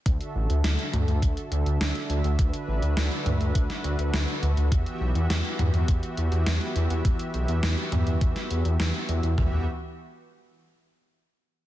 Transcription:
0.06 0.18 D2 loud
0.06 4.68 D3 medium
0.06 4.68 D4 medium
0.06 9.34 F#4 medium
0.06 2.37 A4 medium
0.06 4.68 E5 medium
0.06 kick loud
0.06 closed hi-hat medium
0.21 closed hi-hat soft
0.35 0.47 A1 medium
0.50 0.62 D2 medium
0.50 closed hi-hat soft
0.64 0.76 D2 loud
0.64 snare loud
0.64 closed hi-hat medium
0.79 closed hi-hat soft
0.93 1.05 D2 medium
0.93 closed hi-hat medium
0.93 mid tom medium
1.08 1.20 D2 medium
1.08 closed hi-hat soft
1.22 1.34 D2 medium
1.22 kick loud
1.22 closed hi-hat medium
1.37 closed hi-hat soft
1.51 1.64 D2 medium
1.51 closed hi-hat medium
1.66 1.78 D2 medium
1.66 closed hi-hat soft
1.81 1.93 D2 loud
1.81 snare loud
1.81 closed hi-hat medium
1.95 snare soft
1.95 closed hi-hat soft
2.10 2.22 D2 medium
2.10 closed hi-hat medium
2.24 2.36 D2 medium
2.24 closed hi-hat soft
2.39 2.51 D2 loud
2.39 4.70 B4 medium
2.39 kick loud
2.39 closed hi-hat loud
2.54 closed hi-hat soft
2.68 2.80 A1 medium
2.82 2.95 D2 medium
2.82 closed hi-hat soft
2.97 3.09 D2 loud
2.97 snare loud
2.97 closed hi-hat loud
3.12 closed hi-hat soft
3.26 3.38 D2 medium
3.26 closed hi-hat medium
3.26 mid tom medium
3.41 3.53 D2 medium
3.41 closed hi-hat soft
3.55 3.67 D2 medium
3.55 kick loud
3.55 closed hi-hat medium
3.70 snare soft
3.70 closed hi-hat soft
3.84 3.96 D2 medium
3.84 closed hi-hat medium
3.99 4.11 D2 medium
3.99 closed hi-hat soft
4.13 4.26 D2 loud
4.13 snare loud
4.13 closed hi-hat medium
4.28 closed hi-hat soft
4.42 4.55 D2 medium
4.42 closed hi-hat medium
4.57 4.69 D2 medium
4.57 closed hi-hat soft
4.71 4.84 E2 loud
4.71 9.34 E3 medium
4.71 9.34 B3 medium
4.71 9.34 G4 medium
4.71 9.34 E5 medium
4.71 kick loud
4.71 closed hi-hat medium
4.86 closed hi-hat soft
5.01 5.13 B1 loud
5.15 5.27 E2 medium
5.15 closed hi-hat soft
5.30 5.42 E2 medium
5.30 snare loud
5.30 closed hi-hat medium
5.45 closed hi-hat soft
5.59 5.71 E2 medium
5.59 closed hi-hat medium
5.59 mid tom medium
5.74 5.86 E2 medium
5.74 closed hi-hat soft
5.88 6.00 E2 loud
5.88 kick loud
5.88 closed hi-hat medium
6.03 closed hi-hat soft
6.17 6.30 E2 medium
6.17 closed hi-hat medium
6.32 6.44 E2 medium
6.32 closed hi-hat soft
6.46 6.59 E2 loud
6.46 snare loud
6.46 closed hi-hat medium
6.61 snare soft
6.61 closed hi-hat soft
6.76 6.88 E2 medium
6.76 closed hi-hat medium
6.90 7.02 E2 medium
6.90 closed hi-hat soft
7.05 7.17 E2 loud
7.05 kick loud
7.05 closed hi-hat medium
7.19 closed hi-hat soft
7.34 7.46 B1 medium
7.34 closed hi-hat soft
7.48 7.61 E2 medium
7.48 closed hi-hat soft
7.63 7.75 E2 loud
7.63 snare loud
7.63 closed hi-hat medium
7.78 closed hi-hat soft
7.92 8.04 E2 medium
7.92 closed hi-hat medium
7.92 mid tom medium
8.07 8.19 E2 medium
8.07 closed hi-hat soft
8.21 8.33 E2 loud
8.21 kick loud
8.21 closed hi-hat medium
8.36 snare soft
8.36 closed hi-hat soft
8.51 8.63 E2 loud
8.51 closed hi-hat medium
8.65 8.77 E2 medium
8.65 closed hi-hat soft
8.80 8.92 E2 loud
8.80 snare loud
8.80 closed hi-hat loud
8.94 closed hi-hat soft
9.09 9.21 E2 medium
9.09 closed hi-hat medium
9.23 9.35 E2 medium
9.23 closed hi-hat soft
9.37 9.65 E2 loud
9.37 9.65 E3 medium
9.37 9.65 B3 medium
9.37 9.65 F#4 medium
9.37 9.65 G4 medium
9.37 9.65 E5 medium
9.37 kick loud
9.37 floor tom loud

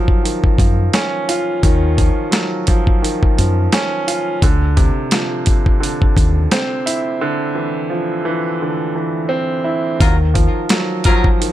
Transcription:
0.00 0.22 D#3 medium
0.00 0.59 F3 medium
0.00 2.30 F#3 medium
0.08 kick medium
0.23 1.63 D#3 medium
0.23 closed hi-hat medium
0.44 kick medium
0.58 0.88 F#2 medium
0.58 1.96 F3 medium
0.58 kick loud
0.58 closed hi-hat medium
0.93 3.72 C#4 loud
0.93 snare loud
0.93 closed hi-hat medium
1.29 4.06 F4 medium
1.29 closed hi-hat medium
1.63 2.09 D#2 loud
1.63 3.01 D#3 medium
1.63 kick loud
1.63 closed hi-hat loud
1.97 2.67 F3 medium
1.97 kick medium
1.97 closed hi-hat medium
2.31 4.41 F#3 medium
2.31 snare loud
2.31 closed hi-hat medium
2.67 3.36 F3 medium
2.67 kick medium
2.67 closed hi-hat medium
2.87 kick medium
3.02 4.42 D#3 medium
3.02 closed hi-hat medium
3.23 kick loud
3.38 3.67 F#2 medium
3.38 4.42 F3 medium
3.38 closed hi-hat medium
3.72 4.43 C#4 loud
3.72 snare loud
3.72 closed hi-hat medium
4.08 4.42 F4 medium
4.08 closed hi-hat medium
4.42 4.88 D2 loud
4.42 5.79 D3 medium
4.42 kick loud
4.42 closed hi-hat loud
4.77 7.56 C3 medium
4.77 kick medium
4.77 closed hi-hat medium
5.11 7.88 F3 medium
5.11 snare loud
5.11 closed hi-hat medium
5.46 kick medium
5.46 closed hi-hat medium
5.66 kick medium
5.80 7.20 D3 medium
5.80 closed hi-hat medium
6.02 kick medium
6.17 6.46 D#2 medium
6.17 kick loud
6.17 closed hi-hat medium
6.51 9.27 C4 loud
6.51 snare loud
6.51 closed hi-hat medium
6.86 9.63 E4 medium
6.86 closed hi-hat medium
7.21 8.61 D3 loud
7.55 8.24 E3 medium
7.90 10.00 F3 medium
8.25 8.94 E3 medium
8.62 10.01 D3 medium
8.96 10.00 E3 medium
9.29 10.00 C4 loud
9.64 10.00 E4 medium
10.00 10.46 D#2 loud
10.00 11.38 D#3 medium
10.00 10.16 F#3 medium
10.00 10.16 F4 medium
10.00 10.16 A#4 medium
10.00 kick loud
10.00 closed hi-hat loud
10.34 11.05 F3 medium
10.34 kick medium
10.34 closed hi-hat medium
10.69 11.52 F#3 medium
10.69 snare loud
10.69 closed hi-hat medium
11.04 11.52 F3 medium
11.04 11.27 F#3 loud
11.04 11.27 F4 loud
11.04 11.27 A#4 loud
11.04 kick medium
11.04 closed hi-hat medium
11.24 kick medium
11.40 11.52 D#3 medium
11.40 closed hi-hat medium

